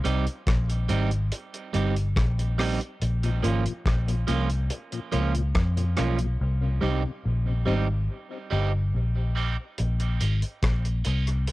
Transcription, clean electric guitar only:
0, 0, Header, 1, 2, 480
1, 0, Start_track
1, 0, Tempo, 846262
1, 1706, Time_signature, 4, 2, 24, 8
1, 6535, End_track
2, 0, Start_track
2, 0, Title_t, "Clean electric guitar"
2, 0, Program_c, 0, 27
2, 23, Note_on_c, 0, 55, 76
2, 26, Note_on_c, 0, 60, 89
2, 29, Note_on_c, 0, 63, 82
2, 31, Note_on_c, 0, 67, 84
2, 137, Note_off_c, 0, 55, 0
2, 138, Note_off_c, 0, 60, 0
2, 140, Note_off_c, 0, 63, 0
2, 141, Note_off_c, 0, 67, 0
2, 503, Note_on_c, 0, 55, 79
2, 507, Note_on_c, 0, 60, 86
2, 510, Note_on_c, 0, 63, 88
2, 512, Note_on_c, 0, 67, 97
2, 617, Note_off_c, 0, 55, 0
2, 619, Note_off_c, 0, 60, 0
2, 621, Note_off_c, 0, 63, 0
2, 622, Note_off_c, 0, 67, 0
2, 983, Note_on_c, 0, 55, 71
2, 986, Note_on_c, 0, 60, 79
2, 989, Note_on_c, 0, 63, 81
2, 993, Note_on_c, 0, 67, 83
2, 1097, Note_off_c, 0, 55, 0
2, 1099, Note_off_c, 0, 60, 0
2, 1101, Note_off_c, 0, 63, 0
2, 1102, Note_off_c, 0, 67, 0
2, 1465, Note_on_c, 0, 55, 88
2, 1469, Note_on_c, 0, 60, 83
2, 1472, Note_on_c, 0, 63, 85
2, 1474, Note_on_c, 0, 67, 81
2, 1579, Note_off_c, 0, 55, 0
2, 1580, Note_off_c, 0, 60, 0
2, 1582, Note_off_c, 0, 63, 0
2, 1583, Note_off_c, 0, 67, 0
2, 1944, Note_on_c, 0, 53, 78
2, 1948, Note_on_c, 0, 58, 80
2, 1951, Note_on_c, 0, 61, 76
2, 1954, Note_on_c, 0, 65, 89
2, 2058, Note_off_c, 0, 53, 0
2, 2060, Note_off_c, 0, 58, 0
2, 2062, Note_off_c, 0, 61, 0
2, 2063, Note_off_c, 0, 65, 0
2, 2423, Note_on_c, 0, 53, 93
2, 2427, Note_on_c, 0, 58, 99
2, 2430, Note_on_c, 0, 61, 94
2, 2434, Note_on_c, 0, 65, 103
2, 2538, Note_off_c, 0, 53, 0
2, 2540, Note_off_c, 0, 58, 0
2, 2542, Note_off_c, 0, 61, 0
2, 2543, Note_off_c, 0, 65, 0
2, 2903, Note_on_c, 0, 53, 78
2, 2906, Note_on_c, 0, 58, 86
2, 2909, Note_on_c, 0, 61, 79
2, 2912, Note_on_c, 0, 65, 88
2, 3018, Note_off_c, 0, 53, 0
2, 3020, Note_off_c, 0, 58, 0
2, 3021, Note_off_c, 0, 61, 0
2, 3023, Note_off_c, 0, 65, 0
2, 3385, Note_on_c, 0, 53, 82
2, 3389, Note_on_c, 0, 58, 79
2, 3391, Note_on_c, 0, 61, 83
2, 3394, Note_on_c, 0, 65, 95
2, 3499, Note_off_c, 0, 53, 0
2, 3501, Note_off_c, 0, 58, 0
2, 3503, Note_off_c, 0, 61, 0
2, 3504, Note_off_c, 0, 65, 0
2, 3863, Note_on_c, 0, 55, 76
2, 3867, Note_on_c, 0, 60, 76
2, 3870, Note_on_c, 0, 63, 92
2, 3873, Note_on_c, 0, 67, 88
2, 3979, Note_off_c, 0, 55, 0
2, 3980, Note_off_c, 0, 60, 0
2, 3982, Note_off_c, 0, 63, 0
2, 3984, Note_off_c, 0, 67, 0
2, 4343, Note_on_c, 0, 55, 87
2, 4348, Note_on_c, 0, 60, 84
2, 4351, Note_on_c, 0, 63, 88
2, 4354, Note_on_c, 0, 67, 83
2, 4459, Note_off_c, 0, 55, 0
2, 4461, Note_off_c, 0, 60, 0
2, 4462, Note_off_c, 0, 63, 0
2, 4464, Note_off_c, 0, 67, 0
2, 4824, Note_on_c, 0, 55, 92
2, 4829, Note_on_c, 0, 60, 90
2, 4832, Note_on_c, 0, 63, 95
2, 4835, Note_on_c, 0, 67, 87
2, 4939, Note_off_c, 0, 55, 0
2, 4941, Note_off_c, 0, 60, 0
2, 4943, Note_off_c, 0, 63, 0
2, 4944, Note_off_c, 0, 67, 0
2, 5305, Note_on_c, 0, 55, 89
2, 5309, Note_on_c, 0, 60, 79
2, 5312, Note_on_c, 0, 63, 88
2, 5314, Note_on_c, 0, 67, 96
2, 5419, Note_off_c, 0, 55, 0
2, 5421, Note_off_c, 0, 60, 0
2, 5423, Note_off_c, 0, 63, 0
2, 5424, Note_off_c, 0, 67, 0
2, 5787, Note_on_c, 0, 53, 88
2, 5790, Note_on_c, 0, 58, 89
2, 5793, Note_on_c, 0, 61, 97
2, 5797, Note_on_c, 0, 65, 91
2, 5900, Note_off_c, 0, 53, 0
2, 5902, Note_off_c, 0, 58, 0
2, 5903, Note_off_c, 0, 61, 0
2, 5905, Note_off_c, 0, 65, 0
2, 6265, Note_on_c, 0, 53, 94
2, 6270, Note_on_c, 0, 58, 104
2, 6272, Note_on_c, 0, 61, 102
2, 6275, Note_on_c, 0, 65, 112
2, 6379, Note_off_c, 0, 53, 0
2, 6381, Note_off_c, 0, 58, 0
2, 6383, Note_off_c, 0, 61, 0
2, 6384, Note_off_c, 0, 65, 0
2, 6535, End_track
0, 0, End_of_file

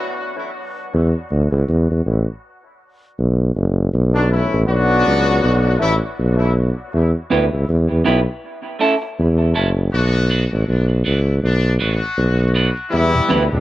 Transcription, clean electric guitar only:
0, 0, Header, 1, 3, 480
1, 0, Start_track
1, 0, Key_signature, 2, "minor"
1, 0, Tempo, 750000
1, 590, Time_signature, 4, 2, 24, 8
1, 8705, End_track
2, 0, Start_track
2, 0, Title_t, "Clean electric guitar"
2, 0, Program_c, 0, 27
2, 4674, Note_on_c, 0, 59, 84
2, 4677, Note_on_c, 0, 64, 87
2, 4680, Note_on_c, 0, 67, 76
2, 4684, Note_on_c, 0, 71, 75
2, 4761, Note_off_c, 0, 59, 0
2, 4762, Note_off_c, 0, 64, 0
2, 4764, Note_off_c, 0, 67, 0
2, 4766, Note_off_c, 0, 71, 0
2, 5149, Note_on_c, 0, 59, 85
2, 5152, Note_on_c, 0, 64, 86
2, 5156, Note_on_c, 0, 67, 80
2, 5159, Note_on_c, 0, 71, 77
2, 5238, Note_off_c, 0, 59, 0
2, 5240, Note_off_c, 0, 64, 0
2, 5241, Note_off_c, 0, 67, 0
2, 5243, Note_off_c, 0, 71, 0
2, 5627, Note_on_c, 0, 57, 83
2, 5634, Note_on_c, 0, 61, 76
2, 5634, Note_on_c, 0, 64, 80
2, 5637, Note_on_c, 0, 69, 90
2, 5717, Note_off_c, 0, 57, 0
2, 5721, Note_off_c, 0, 61, 0
2, 5721, Note_off_c, 0, 64, 0
2, 5722, Note_off_c, 0, 69, 0
2, 6107, Note_on_c, 0, 57, 70
2, 6113, Note_on_c, 0, 61, 77
2, 6115, Note_on_c, 0, 64, 76
2, 6117, Note_on_c, 0, 69, 78
2, 6197, Note_off_c, 0, 57, 0
2, 6200, Note_off_c, 0, 61, 0
2, 6201, Note_off_c, 0, 64, 0
2, 6202, Note_off_c, 0, 69, 0
2, 6588, Note_on_c, 0, 59, 91
2, 6591, Note_on_c, 0, 62, 84
2, 6596, Note_on_c, 0, 66, 88
2, 6598, Note_on_c, 0, 71, 81
2, 6677, Note_off_c, 0, 59, 0
2, 6679, Note_off_c, 0, 62, 0
2, 6681, Note_off_c, 0, 66, 0
2, 6682, Note_off_c, 0, 71, 0
2, 7067, Note_on_c, 0, 59, 68
2, 7071, Note_on_c, 0, 62, 72
2, 7074, Note_on_c, 0, 66, 71
2, 7078, Note_on_c, 0, 71, 78
2, 7157, Note_off_c, 0, 59, 0
2, 7159, Note_off_c, 0, 62, 0
2, 7160, Note_off_c, 0, 66, 0
2, 7162, Note_off_c, 0, 71, 0
2, 7547, Note_on_c, 0, 59, 82
2, 7549, Note_on_c, 0, 62, 81
2, 7551, Note_on_c, 0, 66, 72
2, 7555, Note_on_c, 0, 71, 82
2, 7636, Note_off_c, 0, 59, 0
2, 7638, Note_off_c, 0, 62, 0
2, 7639, Note_off_c, 0, 66, 0
2, 7640, Note_off_c, 0, 71, 0
2, 8026, Note_on_c, 0, 59, 76
2, 8031, Note_on_c, 0, 62, 78
2, 8033, Note_on_c, 0, 66, 76
2, 8036, Note_on_c, 0, 71, 83
2, 8116, Note_off_c, 0, 59, 0
2, 8118, Note_off_c, 0, 62, 0
2, 8120, Note_off_c, 0, 66, 0
2, 8121, Note_off_c, 0, 71, 0
2, 8503, Note_on_c, 0, 59, 76
2, 8507, Note_on_c, 0, 64, 90
2, 8511, Note_on_c, 0, 67, 95
2, 8514, Note_on_c, 0, 71, 94
2, 8594, Note_off_c, 0, 59, 0
2, 8596, Note_off_c, 0, 64, 0
2, 8598, Note_off_c, 0, 67, 0
2, 8599, Note_off_c, 0, 71, 0
2, 8705, End_track
3, 0, Start_track
3, 0, Title_t, "Muted clean electric guitar strokes"
3, 5772, Note_on_c, 9, 29, 38
3, 5836, Note_off_c, 9, 29, 0
3, 8705, End_track
0, 0, End_of_file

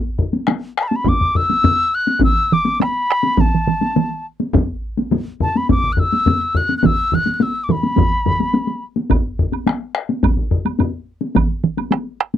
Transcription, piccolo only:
0, 0, Header, 1, 2, 480
1, 0, Start_track
1, 0, Tempo, 579151
1, 1840, Time_signature, 4, 2, 24, 8
1, 5666, Tempo, 565504
1, 10368, End_track
2, 0, Start_track
2, 0, Title_t, "Piccolo"
2, 0, Program_c, 0, 72
2, 661, Note_on_c, 0, 81, 79
2, 675, Note_on_c, 0, 83, 65
2, 687, Note_off_c, 0, 81, 0
2, 728, Note_on_c, 0, 81, 77
2, 740, Note_off_c, 0, 83, 0
2, 795, Note_on_c, 0, 83, 76
2, 807, Note_off_c, 0, 81, 0
2, 898, Note_on_c, 0, 86, 83
2, 910, Note_off_c, 0, 83, 0
2, 1131, Note_on_c, 0, 88, 95
2, 1144, Note_off_c, 0, 86, 0
2, 1614, Note_on_c, 0, 90, 92
2, 1626, Note_off_c, 0, 88, 0
2, 1847, Note_off_c, 0, 90, 0
2, 1860, Note_on_c, 0, 88, 88
2, 2099, Note_on_c, 0, 86, 85
2, 2111, Note_off_c, 0, 88, 0
2, 2330, Note_off_c, 0, 86, 0
2, 2342, Note_on_c, 0, 83, 86
2, 2822, Note_on_c, 0, 81, 75
2, 2835, Note_off_c, 0, 83, 0
2, 3531, Note_off_c, 0, 81, 0
2, 4496, Note_on_c, 0, 81, 82
2, 4618, Note_on_c, 0, 83, 78
2, 4630, Note_off_c, 0, 81, 0
2, 4725, Note_off_c, 0, 83, 0
2, 4735, Note_on_c, 0, 86, 87
2, 4910, Note_on_c, 0, 90, 67
2, 4923, Note_off_c, 0, 86, 0
2, 4968, Note_on_c, 0, 88, 99
2, 4981, Note_off_c, 0, 90, 0
2, 5443, Note_on_c, 0, 90, 88
2, 5456, Note_off_c, 0, 88, 0
2, 5613, Note_off_c, 0, 90, 0
2, 5618, Note_on_c, 0, 90, 65
2, 5684, Note_on_c, 0, 88, 93
2, 5696, Note_off_c, 0, 90, 0
2, 5930, Note_on_c, 0, 90, 89
2, 5943, Note_off_c, 0, 88, 0
2, 6092, Note_off_c, 0, 90, 0
2, 6092, Note_on_c, 0, 90, 59
2, 6166, Note_on_c, 0, 88, 84
2, 6179, Note_off_c, 0, 90, 0
2, 6346, Note_on_c, 0, 86, 55
2, 6359, Note_off_c, 0, 88, 0
2, 6412, Note_on_c, 0, 83, 79
2, 6424, Note_off_c, 0, 86, 0
2, 7366, Note_off_c, 0, 83, 0
2, 10368, End_track
0, 0, End_of_file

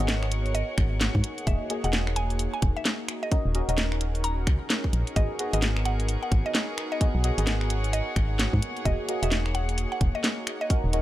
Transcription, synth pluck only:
0, 0, Header, 1, 2, 480
1, 0, Start_track
1, 0, Key_signature, 5, "minor"
1, 0, Tempo, 461538
1, 1529, Time_signature, 4, 2, 24, 8
1, 11460, End_track
2, 0, Start_track
2, 0, Title_t, "Synth pluck"
2, 0, Program_c, 0, 84
2, 568, Note_on_c, 0, 75, 98
2, 1454, Note_off_c, 0, 75, 0
2, 1527, Note_on_c, 0, 76, 100
2, 1742, Note_off_c, 0, 76, 0
2, 1916, Note_on_c, 0, 78, 96
2, 2114, Note_off_c, 0, 78, 0
2, 2248, Note_on_c, 0, 80, 96
2, 2463, Note_off_c, 0, 80, 0
2, 2636, Note_on_c, 0, 80, 91
2, 2751, Note_off_c, 0, 80, 0
2, 2876, Note_on_c, 0, 76, 95
2, 3143, Note_off_c, 0, 76, 0
2, 3357, Note_on_c, 0, 75, 97
2, 3555, Note_off_c, 0, 75, 0
2, 4410, Note_on_c, 0, 82, 100
2, 5295, Note_off_c, 0, 82, 0
2, 5369, Note_on_c, 0, 75, 104
2, 5583, Note_off_c, 0, 75, 0
2, 5757, Note_on_c, 0, 75, 93
2, 5955, Note_off_c, 0, 75, 0
2, 6089, Note_on_c, 0, 78, 97
2, 6303, Note_off_c, 0, 78, 0
2, 6475, Note_on_c, 0, 78, 89
2, 6590, Note_off_c, 0, 78, 0
2, 6716, Note_on_c, 0, 75, 95
2, 6983, Note_off_c, 0, 75, 0
2, 7195, Note_on_c, 0, 75, 97
2, 7394, Note_off_c, 0, 75, 0
2, 8249, Note_on_c, 0, 75, 97
2, 9134, Note_off_c, 0, 75, 0
2, 9208, Note_on_c, 0, 75, 101
2, 9422, Note_off_c, 0, 75, 0
2, 9595, Note_on_c, 0, 76, 96
2, 9794, Note_off_c, 0, 76, 0
2, 9928, Note_on_c, 0, 78, 98
2, 10142, Note_off_c, 0, 78, 0
2, 10315, Note_on_c, 0, 78, 92
2, 10430, Note_off_c, 0, 78, 0
2, 10555, Note_on_c, 0, 75, 93
2, 10823, Note_off_c, 0, 75, 0
2, 11036, Note_on_c, 0, 75, 95
2, 11234, Note_off_c, 0, 75, 0
2, 11460, End_track
0, 0, End_of_file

